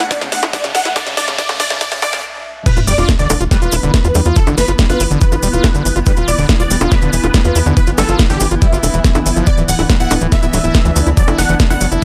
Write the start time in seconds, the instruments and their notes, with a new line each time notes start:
Already playing: ambient pad E3 A3 B3 D4 E5 A5, riser
0.00 acid bass E4, snare, closed hi-hat
0.11 acid bass D4, supersaw synth D5, kick, snare, closed hi-hat
0.21 acid bass C#3, snare, closed hi-hat, high bongo
0.32 acid bass D3, supersaw synth F#5, snare, open hi-hat
0.43 acid bass E4, snare, closed hi-hat, high bongo
0.53 acid bass D4, supersaw synth D5, kick, snare, closed hi-hat
0.64 acid bass C#3, snare, closed hi-hat
0.75 acid bass D3, supersaw synth F#5, snare, open hi-hat, high bongo
0.85 acid bass E4, snare, closed hi-hat
0.96 acid bass D4, supersaw synth D5, kick, snare, closed hi-hat, high bongo
1.07 acid bass C#3, snare, closed hi-hat
1.17 acid bass D4, supersaw synth D5, snare, open hi-hat
1.28 acid bass C#3, snare, closed hi-hat, high bongo
1.38 acid bass D4, supersaw synth D5, kick, snare, closed hi-hat
1.49 acid bass C#3, snare, closed hi-hat, high bongo
1.60 acid bass D4, supersaw synth D5, snare, open hi-hat
1.70 acid bass C#3, snare, closed hi-hat
1.81 acid bass D4, supersaw synth D5, kick, snare, closed hi-hat, high bongo
1.92 acid bass C#3, snare, closed hi-hat
2.02 acid bass D4, supersaw synth D5, snare, open hi-hat, high bongo
2.13 acid bass C#3, snare, closed hi-hat
2.66 ambient pad E3 B3, acid bass E3, supersaw synth B4, kick, closed hi-hat, crash, sub drop, maracas
2.77 analog synth bass E1, ambient pad E4, acid bass F4, closed hi-hat, maracas
2.87 analog synth bass E1, acid bass G3, supersaw synth D5, open hi-hat, maracas
2.98 analog synth bass E1, acid bass F4, open hi-hat, high bongo, maracas
3.09 acid bass E4, ambient pad B5, kick, snare, closed hi-hat, maracas
3.19 analog synth bass E1, acid bass D3, supersaw synth D5, closed hi-hat, maracas
3.30 analog synth bass E1, acid bass E3, open hi-hat, high bongo, maracas
3.40 analog synth bass E1, acid bass F4, closed hi-hat, maracas
3.51 acid bass G3, supersaw synth B4, kick, snare, closed hi-hat, maracas
3.62 analog synth bass E1, acid bass F4, closed hi-hat, maracas
3.72 analog synth bass E1, acid bass E4, open hi-hat, high bongo, maracas
3.83 analog synth bass E1, acid bass D3, closed hi-hat, maracas
3.94 kick, snare, closed hi-hat, maracas
4.04 analog synth bass E2, acid bass F4, closed hi-hat, maracas
4.15 analog synth bass E2, acid bass G3, open hi-hat, high bongo, maracas
4.25 analog synth bass E2, acid bass F4, closed hi-hat, maracas
4.36 acid bass E4, supersaw synth A4, kick, closed hi-hat, maracas
4.47 analog synth bass G1, acid bass D3, closed hi-hat, high bongo, maracas
4.58 analog synth bass G1, acid bass E3, supersaw synth B4, snare, open hi-hat, maracas
4.68 analog synth bass G1, acid bass F4, closed hi-hat, maracas
4.79 acid bass G3, kick, snare, closed hi-hat, maracas
4.90 analog synth bass G1, acid bass F4, supersaw synth B4, closed hi-hat, high bongo, maracas
5.00 analog synth bass G1, acid bass E4, open hi-hat, maracas
5.11 analog synth bass G1, acid bass D3, closed hi-hat, maracas
5.21 acid bass E3, supersaw synth B4, kick, closed hi-hat, maracas
5.32 analog synth bass G1, acid bass F4, closed hi-hat, high bongo, maracas
5.43 analog synth bass E1, acid bass G3, open hi-hat, maracas
5.53 analog synth bass E1, acid bass F4, closed hi-hat, maracas
5.64 acid bass E4, kick, snare, closed hi-hat, high bongo, maracas
5.75 analog synth bass G1, acid bass D3, closed hi-hat, maracas
5.85 analog synth bass G1, acid bass E3, open hi-hat, maracas
5.96 analog synth bass G1, acid bass F4, closed hi-hat, maracas
6.06 acid bass G3, supersaw synth B4, kick, closed hi-hat, high bongo, maracas
6.17 analog synth bass E1, acid bass F4, closed hi-hat, maracas
6.28 analog synth bass E1, acid bass E4, supersaw synth D5, open hi-hat, maracas
6.38 analog synth bass E1, acid bass D3, open hi-hat, maracas
6.49 kick, snare, closed hi-hat, high bongo, maracas
6.60 analog synth bass E1, acid bass F4, supersaw synth D5, closed hi-hat, maracas
6.70 analog synth bass E1, acid bass G3, open hi-hat, maracas
6.81 analog synth bass E1, acid bass F4, closed hi-hat, high bongo, maracas
6.91 acid bass E4, supersaw synth B4, kick, snare, closed hi-hat, maracas
7.02 analog synth bass E1, acid bass D3, closed hi-hat, maracas
7.13 analog synth bass E1, acid bass E3, open hi-hat, maracas
7.24 analog synth bass E1, acid bass F4, closed hi-hat, high bongo, maracas
7.34 acid bass G3, kick, snare, closed hi-hat, maracas
7.45 analog synth bass E2, acid bass F4, closed hi-hat, maracas
7.55 analog synth bass E2, acid bass E4, open hi-hat, maracas
7.66 analog synth bass E2, acid bass D3, high bongo, maracas
7.77 acid bass E3, supersaw synth B4, kick, closed hi-hat, maracas
7.87 analog synth bass G1, acid bass F4, closed hi-hat, maracas
7.98 analog synth bass G1, acid bass G3, supersaw synth A4, snare, open hi-hat, high bongo, maracas
8.08 analog synth bass G1, acid bass F4, closed hi-hat, maracas
8.19 acid bass E4, kick, snare, closed hi-hat, maracas
8.30 analog synth bass G1, acid bass D3, supersaw synth G4, closed hi-hat, maracas
8.40 analog synth bass G1, acid bass E3, open hi-hat, high bongo, maracas
8.51 analog synth bass G1, acid bass F4, closed hi-hat, maracas
8.62 acid bass G3, supersaw synth E4, kick, closed hi-hat, maracas
8.72 analog synth bass G1, acid bass F4, closed hi-hat, maracas
8.83 analog synth bass E1, acid bass D3, open hi-hat, high bongo, maracas
8.94 analog synth bass E1, acid bass E3, closed hi-hat, maracas
9.04 acid bass E3, kick, snare, closed hi-hat, maracas
9.15 analog synth bass G1, acid bass E4, closed hi-hat, high bongo, maracas
9.26 analog synth bass G1, acid bass E3, open hi-hat, maracas
9.36 analog synth bass G1, acid bass F3, closed hi-hat, maracas
9.47 ambient pad A3, acid bass D4, supersaw synth D5, kick, closed hi-hat, maracas
9.58 analog synth bass D1, acid bass E3, closed hi-hat, maracas
9.67 analog synth bass D1, acid bass D3, ambient pad D4, supersaw synth F#5, open hi-hat, maracas
9.79 analog synth bass D1, acid bass E4, open hi-hat, high bongo, maracas
9.90 acid bass F#3, ambient pad D5, kick, snare, closed hi-hat, maracas
9.97 analog synth bass D1, acid bass E4, supersaw synth F#5, ambient pad A5, closed hi-hat, maracas
10.11 analog synth bass D1, acid bass D4, open hi-hat, high bongo, maracas
10.21 analog synth bass D1, acid bass E3, closed hi-hat, maracas
10.32 acid bass D3, supersaw synth E5, kick, snare, closed hi-hat, maracas
10.43 analog synth bass D1, acid bass E4, closed hi-hat, maracas
10.53 analog synth bass D1, acid bass F#3, open hi-hat, high bongo, maracas
10.64 analog synth bass D1, acid bass E4, closed hi-hat, maracas
10.74 acid bass D4, kick, snare, closed hi-hat, maracas
10.85 analog synth bass D2, acid bass E3, closed hi-hat, maracas
10.96 analog synth bass D2, acid bass D3, open hi-hat, high bongo, maracas
11.07 analog synth bass D2, acid bass E4, closed hi-hat, maracas
11.17 acid bass F#3, supersaw synth D5, kick, closed hi-hat, maracas
11.28 analog synth bass F#1, acid bass E4, closed hi-hat, high bongo, maracas
11.38 analog synth bass F#1, acid bass D4, supersaw synth F#5, snare, open hi-hat, maracas
11.49 analog synth bass F#1, acid bass E3, closed hi-hat, maracas
11.60 acid bass D3, kick, snare, closed hi-hat, maracas
11.70 analog synth bass F#1, acid bass E4, supersaw synth F#5, closed hi-hat, high bongo, maracas
11.81 analog synth bass F#1, acid bass F#3, open hi-hat, maracas
11.92 analog synth bass F#1, acid bass E4, closed hi-hat, maracas